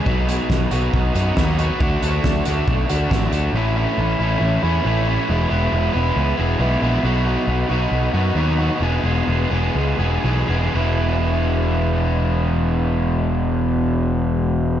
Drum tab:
HH |-x-x-x-x|-x-x-x-x|--------|--------|
SD |--o---o-|--o---o-|--------|--------|
BD |o-o-o-o-|o-o-o-o-|--------|--------|

HH |--------|--------|--------|--------|
SD |--------|--------|--------|--------|
BD |--------|--------|--------|--------|